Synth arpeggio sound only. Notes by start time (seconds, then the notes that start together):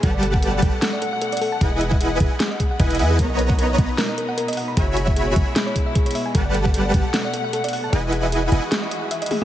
0.03 A4
0.14 D5
0.23 A4
0.34 F#5
0.43 A4
0.53 D5
0.62 A4
0.73 A5
0.82 A4
0.93 D5
1.02 A4
1.13 F#5
1.22 A4
1.33 D5
1.41 A4
1.52 A5
1.61 G#4
1.72 D#5
1.81 G#4
1.92 E5
2.01 G#4
2.12 D#5
2.21 G#4
2.31 G#5
2.40 G#4
2.51 D#5
2.60 G#4
2.71 F#5
2.80 E5
2.90 F#5
2.99 E5
3.10 G#4
3.19 A#4
3.30 D#5
3.39 A#4
3.50 F#5
3.59 A#4
3.70 D#5
3.79 F#5
3.89 B5
3.98 A#4
4.09 D#5
4.18 A#4
4.29 F#5
4.37 A#4
4.48 D#5
4.57 F#5
4.68 B5
4.77 G#4
4.88 C#5
4.97 G#4
5.07 E5
5.16 G#4
5.27 C#5
5.36 E5
5.47 G#5
5.56 G#4
5.67 C#5
5.76 G#4
5.86 E5
5.95 G#4
6.06 C#5
6.15 E5
6.26 G#5
6.35 A4
6.46 D5
6.54 A4
6.65 F#5
6.74 A4
6.85 D5
6.94 F#5
7.05 A5
7.14 A4
7.25 D5
7.34 A4
7.44 F#5
7.53 A4
7.64 D5
7.73 F#5
7.84 A5
7.93 G#4
8.04 D#5
8.13 G#4
8.23 E5
8.32 G#4
8.43 D#5
8.52 E5
8.63 G#5
8.71 G#4
8.82 D#5
8.91 D#5
9.02 F#5
9.11 E5
9.22 D#5
9.31 G#4